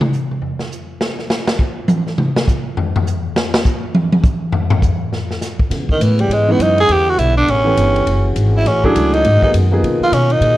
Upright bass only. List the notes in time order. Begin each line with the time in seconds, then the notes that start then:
5.70 C#3
5.89 muted upright bass stroke
6.00 A2
6.29 G#2
6.59 F#2
6.89 E2
7.18 B1
7.47 A1
7.76 G1
8.07 F#1
8.36 G#1
8.66 A1
8.95 C#2
9.25 G#2
9.54 F#2
9.83 C#3
10.01 muted upright bass stroke
10.12 B2
10.41 A#2